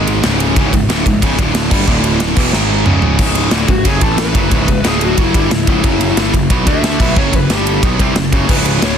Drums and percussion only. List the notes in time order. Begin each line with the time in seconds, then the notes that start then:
0.07 ride
0.23 snare, ride
0.40 ride
0.56 kick, ride
0.73 kick, ride
0.90 snare, ride
1.06 kick, ride
1.22 kick, ride
1.39 kick, ride
1.55 snare, ride
1.71 kick, crash
1.88 kick
2.04 ride
2.20 snare, ride
2.36 kick, crash
2.53 snare
2.86 mid tom
3.02 floor tom
3.19 kick, crash
3.35 ride
3.51 snare, ride
3.68 kick, ride
3.85 kick, ride
4.01 kick, ride
4.18 snare, ride
4.35 kick, ride
4.51 kick, ride
4.68 kick, ride
4.84 snare, ride
5.01 ride
5.18 kick, ride
5.34 kick, ride
5.51 snare, ride
5.67 kick, ride
5.84 kick, ride
6.01 ride
6.17 snare, ride
6.34 kick, ride
6.50 kick, ride
6.67 kick, ride
6.84 snare, ride
7.00 kick, crash
7.16 kick
7.33 kick, ride
7.50 snare, ride
7.67 ride
7.83 kick, ride
7.99 kick, ride
8.16 snare, ride
8.32 kick, ride
8.49 kick, crash
8.66 ride
8.82 snare, ride